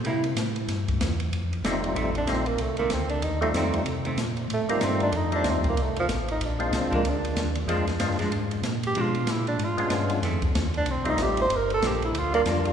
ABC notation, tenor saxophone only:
X:1
M:4/4
L:1/8
Q:"Swing" 1/4=189
K:Fmix
V:1 name="Tenor saxophone"
z8 | z4 z D C B, | A, B, C D E A, z2 | z4 A, B, C D |
E D C B, A, F, z E | D2 C B, D3 z | z6 z G | F2 =E D F3 z |
z3 D C E G c | B A G =E F B, z2 |]